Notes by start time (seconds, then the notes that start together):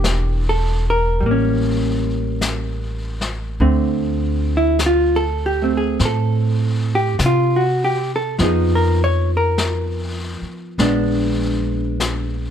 Already playing: E1 E3 A#3 D4 G4
0.04 brush sweep, snare, hi-hat pedal
0.49 A4
0.90 A#4
1.21 A1 G3, brush sweep
1.26 A#3
1.31 C#4
2.41 brush sweep, snare, hi-hat pedal
3.21 snare
3.60 D2 D3 A3 C4, brush sweep
4.57 E4
4.79 brush sweep, snare, hi-hat pedal
4.86 F4
5.16 A4
5.46 G4
5.62 A3 C4
5.77 G#4
5.99 A2, brush sweep, snare
6.05 A4
6.95 G4
7.19 C3, brush sweep, snare, hi-hat pedal
7.26 F4
7.56 F#4
7.85 G4
8.16 A4
8.38 F2 F3 B3 D#4, brush sweep, snare
8.43 G#4
8.75 A#4
9.04 C#5
9.37 A#4
9.58 brush sweep, snare, hi-hat pedal
10.42 muted upright bass stroke
10.78 A#1 G#3 B3 D4, brush sweep, snare
12.00 brush sweep, snare, hi-hat pedal